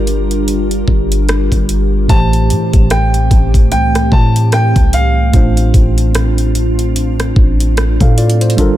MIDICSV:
0, 0, Header, 1, 6, 480
1, 0, Start_track
1, 0, Tempo, 810811
1, 1240, Time_signature, 4, 2, 24, 8
1, 5192, End_track
2, 0, Start_track
2, 0, Title_t, "Grand piano"
2, 0, Program_c, 0, 0
2, 1241, Note_on_c, 0, 81, 107
2, 1722, Note_on_c, 0, 79, 94
2, 1735, Note_off_c, 0, 81, 0
2, 2192, Note_off_c, 0, 79, 0
2, 2201, Note_on_c, 0, 79, 97
2, 2424, Note_off_c, 0, 79, 0
2, 2444, Note_on_c, 0, 81, 91
2, 2686, Note_on_c, 0, 79, 96
2, 2689, Note_off_c, 0, 81, 0
2, 2924, Note_on_c, 0, 77, 99
2, 2930, Note_off_c, 0, 79, 0
2, 3378, Note_off_c, 0, 77, 0
2, 5192, End_track
3, 0, Start_track
3, 0, Title_t, "Tine electric piano"
3, 0, Program_c, 1, 4
3, 0, Control_c, 1, 64, 127
3, 0, Note_on_c, 1, 55, 66
3, 0, Note_on_c, 1, 62, 62
3, 0, Note_on_c, 1, 65, 60
3, 0, Note_on_c, 1, 67, 61
3, 0, Note_on_c, 1, 70, 75
3, 1211, Note_off_c, 1, 55, 0
3, 1213, Note_off_c, 1, 62, 0
3, 1217, Note_off_c, 1, 65, 0
3, 1220, Note_off_c, 1, 67, 0
3, 1223, Note_off_c, 1, 70, 0
3, 1226, Note_on_c, 1, 45, 73
3, 1233, Note_on_c, 1, 57, 67
3, 1239, Note_on_c, 1, 52, 65
3, 1246, Note_on_c, 1, 67, 64
3, 1249, Control_c, 1, 64, 0
3, 1251, Note_on_c, 1, 72, 79
3, 1364, Control_c, 1, 64, 127
3, 3129, Note_off_c, 1, 45, 0
3, 3133, Note_off_c, 1, 57, 0
3, 3136, Note_off_c, 1, 52, 0
3, 3139, Note_off_c, 1, 67, 0
3, 3142, Note_off_c, 1, 72, 0
3, 3147, Note_on_c, 1, 45, 69
3, 3154, Note_on_c, 1, 57, 63
3, 3160, Note_on_c, 1, 62, 62
3, 3166, Note_on_c, 1, 65, 63
3, 3168, Control_c, 1, 64, 0
3, 3173, Note_on_c, 1, 72, 75
3, 3271, Control_c, 1, 64, 127
3, 4570, Note_off_c, 1, 45, 0
3, 4573, Note_off_c, 1, 57, 0
3, 4576, Note_off_c, 1, 62, 0
3, 4579, Note_off_c, 1, 65, 0
3, 4583, Note_off_c, 1, 72, 0
3, 4743, Note_on_c, 1, 77, 67
3, 4747, Note_on_c, 1, 69, 62
3, 4837, Note_off_c, 1, 77, 0
3, 4839, Note_off_c, 1, 69, 0
3, 4842, Note_on_c, 1, 74, 69
3, 4845, Note_on_c, 1, 65, 60
3, 4973, Note_off_c, 1, 74, 0
3, 4975, Note_off_c, 1, 65, 0
3, 4981, Note_on_c, 1, 72, 72
3, 5070, Note_on_c, 1, 55, 85
3, 5076, Note_on_c, 1, 62, 76
3, 5082, Note_on_c, 1, 65, 77
3, 5088, Note_on_c, 1, 69, 75
3, 5089, Control_c, 1, 64, 0
3, 5094, Note_on_c, 1, 70, 92
3, 5192, Note_off_c, 1, 55, 0
3, 5192, Note_off_c, 1, 62, 0
3, 5192, Note_off_c, 1, 65, 0
3, 5192, Note_off_c, 1, 69, 0
3, 5192, Note_off_c, 1, 70, 0
3, 5192, Note_off_c, 1, 72, 0
3, 5192, End_track
4, 0, Start_track
4, 0, Title_t, "Ambient pad"
4, 0, Program_c, 2, 92
4, 0, Note_on_c, 2, 55, 78
4, 0, Note_on_c, 2, 62, 75
4, 0, Note_on_c, 2, 65, 70
4, 0, Note_on_c, 2, 67, 76
4, 0, Note_on_c, 2, 70, 89
4, 1215, Note_off_c, 2, 55, 0
4, 1215, Note_off_c, 2, 62, 0
4, 1215, Note_off_c, 2, 70, 0
4, 1216, Note_off_c, 2, 65, 0
4, 1216, Note_off_c, 2, 67, 0
4, 1239, Note_on_c, 2, 57, 82
4, 1239, Note_on_c, 2, 60, 73
4, 1239, Note_on_c, 2, 67, 93
4, 3140, Note_off_c, 2, 67, 0
4, 3141, Note_off_c, 2, 57, 0
4, 3158, Note_on_c, 2, 65, 90
4, 3160, Note_on_c, 2, 62, 73
4, 5056, Note_off_c, 2, 60, 0
4, 5060, Note_off_c, 2, 65, 0
4, 5061, Note_off_c, 2, 62, 0
4, 5082, Note_on_c, 2, 65, 75
4, 5083, Note_on_c, 2, 58, 91
4, 5083, Note_on_c, 2, 62, 75
4, 5083, Note_on_c, 2, 81, 75
4, 5084, Note_on_c, 2, 55, 81
4, 5192, Note_off_c, 2, 55, 0
4, 5192, Note_off_c, 2, 58, 0
4, 5192, Note_off_c, 2, 62, 0
4, 5192, Note_off_c, 2, 65, 0
4, 5192, Note_off_c, 2, 81, 0
4, 5192, End_track
5, 0, Start_track
5, 0, Title_t, "808-style bass"
5, 0, Program_c, 3, 38
5, 0, Note_on_c, 3, 31, 98
5, 496, Note_off_c, 3, 31, 0
5, 520, Note_on_c, 3, 31, 99
5, 884, Note_off_c, 3, 31, 0
5, 900, Note_on_c, 3, 31, 96
5, 1227, Note_off_c, 3, 31, 0
5, 1241, Note_on_c, 3, 33, 107
5, 1482, Note_on_c, 3, 45, 93
5, 1491, Note_off_c, 3, 33, 0
5, 1614, Note_off_c, 3, 45, 0
5, 1621, Note_on_c, 3, 33, 98
5, 1947, Note_off_c, 3, 33, 0
5, 1960, Note_on_c, 3, 33, 111
5, 2200, Note_on_c, 3, 36, 92
5, 2209, Note_off_c, 3, 33, 0
5, 2428, Note_off_c, 3, 36, 0
5, 2439, Note_on_c, 3, 45, 105
5, 2804, Note_off_c, 3, 45, 0
5, 2818, Note_on_c, 3, 36, 101
5, 3146, Note_off_c, 3, 36, 0
5, 3160, Note_on_c, 3, 33, 114
5, 3391, Note_off_c, 3, 33, 0
5, 3399, Note_on_c, 3, 33, 96
5, 4336, Note_off_c, 3, 33, 0
5, 4359, Note_on_c, 3, 33, 107
5, 4724, Note_off_c, 3, 33, 0
5, 4740, Note_on_c, 3, 45, 95
5, 5067, Note_off_c, 3, 45, 0
5, 5083, Note_on_c, 3, 31, 112
5, 5192, Note_off_c, 3, 31, 0
5, 5192, End_track
6, 0, Start_track
6, 0, Title_t, "Drums"
6, 43, Note_on_c, 9, 42, 60
6, 102, Note_off_c, 9, 42, 0
6, 183, Note_on_c, 9, 42, 49
6, 242, Note_off_c, 9, 42, 0
6, 283, Note_on_c, 9, 42, 73
6, 342, Note_off_c, 9, 42, 0
6, 421, Note_on_c, 9, 42, 46
6, 480, Note_off_c, 9, 42, 0
6, 519, Note_on_c, 9, 36, 103
6, 578, Note_off_c, 9, 36, 0
6, 661, Note_on_c, 9, 42, 71
6, 721, Note_off_c, 9, 42, 0
6, 761, Note_on_c, 9, 42, 58
6, 764, Note_on_c, 9, 37, 109
6, 821, Note_off_c, 9, 42, 0
6, 823, Note_off_c, 9, 37, 0
6, 898, Note_on_c, 9, 36, 90
6, 900, Note_on_c, 9, 42, 51
6, 957, Note_off_c, 9, 36, 0
6, 959, Note_off_c, 9, 42, 0
6, 1000, Note_on_c, 9, 42, 79
6, 1060, Note_off_c, 9, 42, 0
6, 1240, Note_on_c, 9, 36, 103
6, 1240, Note_on_c, 9, 42, 62
6, 1299, Note_off_c, 9, 36, 0
6, 1299, Note_off_c, 9, 42, 0
6, 1381, Note_on_c, 9, 42, 47
6, 1440, Note_off_c, 9, 42, 0
6, 1481, Note_on_c, 9, 42, 71
6, 1541, Note_off_c, 9, 42, 0
6, 1619, Note_on_c, 9, 36, 92
6, 1619, Note_on_c, 9, 42, 47
6, 1678, Note_off_c, 9, 42, 0
6, 1679, Note_off_c, 9, 36, 0
6, 1719, Note_on_c, 9, 42, 76
6, 1723, Note_on_c, 9, 37, 105
6, 1778, Note_off_c, 9, 42, 0
6, 1782, Note_off_c, 9, 37, 0
6, 1859, Note_on_c, 9, 42, 47
6, 1918, Note_off_c, 9, 42, 0
6, 1959, Note_on_c, 9, 36, 86
6, 1960, Note_on_c, 9, 42, 62
6, 2018, Note_off_c, 9, 36, 0
6, 2020, Note_off_c, 9, 42, 0
6, 2097, Note_on_c, 9, 36, 95
6, 2101, Note_on_c, 9, 42, 49
6, 2156, Note_off_c, 9, 36, 0
6, 2160, Note_off_c, 9, 42, 0
6, 2200, Note_on_c, 9, 42, 74
6, 2259, Note_off_c, 9, 42, 0
6, 2340, Note_on_c, 9, 42, 45
6, 2341, Note_on_c, 9, 37, 87
6, 2399, Note_off_c, 9, 42, 0
6, 2400, Note_off_c, 9, 37, 0
6, 2438, Note_on_c, 9, 36, 104
6, 2497, Note_off_c, 9, 36, 0
6, 2581, Note_on_c, 9, 42, 68
6, 2640, Note_off_c, 9, 42, 0
6, 2677, Note_on_c, 9, 42, 59
6, 2680, Note_on_c, 9, 37, 111
6, 2736, Note_off_c, 9, 42, 0
6, 2739, Note_off_c, 9, 37, 0
6, 2817, Note_on_c, 9, 36, 85
6, 2818, Note_on_c, 9, 42, 51
6, 2876, Note_off_c, 9, 36, 0
6, 2877, Note_off_c, 9, 42, 0
6, 2919, Note_on_c, 9, 42, 77
6, 2978, Note_off_c, 9, 42, 0
6, 3158, Note_on_c, 9, 42, 65
6, 3159, Note_on_c, 9, 36, 102
6, 3217, Note_off_c, 9, 42, 0
6, 3218, Note_off_c, 9, 36, 0
6, 3298, Note_on_c, 9, 42, 51
6, 3358, Note_off_c, 9, 42, 0
6, 3398, Note_on_c, 9, 36, 88
6, 3400, Note_on_c, 9, 42, 70
6, 3457, Note_off_c, 9, 36, 0
6, 3459, Note_off_c, 9, 42, 0
6, 3539, Note_on_c, 9, 42, 50
6, 3598, Note_off_c, 9, 42, 0
6, 3638, Note_on_c, 9, 42, 79
6, 3642, Note_on_c, 9, 37, 109
6, 3698, Note_off_c, 9, 42, 0
6, 3702, Note_off_c, 9, 37, 0
6, 3778, Note_on_c, 9, 42, 48
6, 3837, Note_off_c, 9, 42, 0
6, 3878, Note_on_c, 9, 42, 61
6, 3938, Note_off_c, 9, 42, 0
6, 4019, Note_on_c, 9, 42, 49
6, 4078, Note_off_c, 9, 42, 0
6, 4120, Note_on_c, 9, 42, 71
6, 4179, Note_off_c, 9, 42, 0
6, 4260, Note_on_c, 9, 42, 47
6, 4262, Note_on_c, 9, 37, 80
6, 4319, Note_off_c, 9, 42, 0
6, 4321, Note_off_c, 9, 37, 0
6, 4358, Note_on_c, 9, 36, 104
6, 4418, Note_off_c, 9, 36, 0
6, 4502, Note_on_c, 9, 42, 68
6, 4561, Note_off_c, 9, 42, 0
6, 4601, Note_on_c, 9, 42, 58
6, 4604, Note_on_c, 9, 37, 109
6, 4660, Note_off_c, 9, 42, 0
6, 4663, Note_off_c, 9, 37, 0
6, 4739, Note_on_c, 9, 36, 91
6, 4740, Note_on_c, 9, 42, 53
6, 4798, Note_off_c, 9, 36, 0
6, 4800, Note_off_c, 9, 42, 0
6, 4841, Note_on_c, 9, 42, 66
6, 4841, Note_on_c, 9, 46, 82
6, 4900, Note_off_c, 9, 42, 0
6, 4900, Note_off_c, 9, 46, 0
6, 4911, Note_on_c, 9, 42, 68
6, 4970, Note_off_c, 9, 42, 0
6, 4980, Note_on_c, 9, 42, 73
6, 5031, Note_off_c, 9, 42, 0
6, 5031, Note_on_c, 9, 42, 65
6, 5080, Note_off_c, 9, 42, 0
6, 5080, Note_on_c, 9, 42, 71
6, 5081, Note_on_c, 9, 36, 99
6, 5139, Note_off_c, 9, 42, 0
6, 5140, Note_off_c, 9, 36, 0
6, 5192, End_track
0, 0, End_of_file